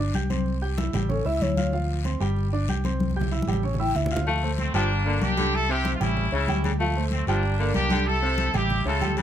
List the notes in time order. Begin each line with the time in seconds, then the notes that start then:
Already playing: G1
0.00 D4 D5 D6
0.14 C2 G4 G5 G6, high conga, short guiro
0.30 C4 C5 C6, high conga, short guiro
0.46 high conga, long guiro
0.62 G4 G5 G6, high conga
0.77 E4 E5 E6, high conga, short guiro
0.93 A1 G3 G4 G5, low conga, short guiro
1.09 C#4 A4 C#5 C#6, high conga, low conga, long guiro
1.25 C#2 E4 E5 E6, high conga
1.41 D2 C#5, high conga, short guiro
1.57 F4 F5 F6, high conga, short guiro
1.73 F3 F4 F5, high conga, long guiro
1.89 high conga
2.04 C4 C5 C6, high conga, short guiro
2.20 G1 G3 G4 G5, short guiro
2.36 high conga, long guiro
2.53 D4 D5 D6, high conga
2.68 C2 G4 G5 G6, high conga, short guiro
2.84 C4 C5 C6, high conga, short guiro
3.00 high conga, long guiro
3.11 high conga
3.16 G4 G5 G6
3.21 low conga
3.31 E4 E5 E6, short guiro
3.42 high conga
3.47 A1 G3 G4 G5, short guiro
3.53 low conga
3.63 C#4 C#5 C#6, long guiro
3.74 low conga
3.79 E4 E5 G5 E6
3.95 D2 E5, low conga, short guiro
4.06 low conga
4.11 F4 F5 F6, short guiro
4.17 low conga
4.27 F3 A3 F4 F5, high conga, long guiro
4.43 A3 A4 C5, high conga
4.58 A3 C4, high conga, short guiro
4.74 G1 F3 G3 A#3 D4 G4 G5, high conga, short guiro
4.90 high conga, long guiro
5.06 D3 A#3 A#4 D5, high conga
5.22 C2 D4 G4, high conga, short guiro
5.37 D3 G3 G4 G5, high conga, short guiro
5.53 E4 A4, high conga, long guiro
5.69 C3 C4 E4 G4 C5 E5, high conga
5.85 high conga, short guiro
5.95 F4
6.00 A1 G3 C#4 E4 G4 G5, low conga, short guiro
6.17 high conga, low conga, long guiro
6.32 C#2 C#3 C#4 E4 C#5 E5, high conga
6.48 D2 G3 G4 G5, high conga, short guiro
6.64 C#3, high conga, short guiro
6.80 F3 A3 F4 F5, high conga, long guiro
6.96 A3 A4 C5, high conga
7.11 A3 C4, high conga, short guiro
7.27 G1 F3 G3 A#3 D4 G4 G5, high conga, short guiro
7.43 high conga, long guiro
7.59 D3 A#3 A#4 D5, high conga
7.74 C2 D4 G4, high conga, short guiro
7.90 D3 G3 G4 G5, high conga, short guiro
8.06 E4 A4, high conga, long guiro
8.22 C3 C4 C5 E5, high conga
8.38 high conga, short guiro
8.53 A1 G3 E4 G4 G5, low conga, short guiro
8.69 high conga, low conga, long guiro
8.85 C#2 C#3 C#4 F4 A4 C#5 E5, high conga
9.01 D2 G3 G4 G5, high conga, short guiro
9.17 C#3, high conga, short guiro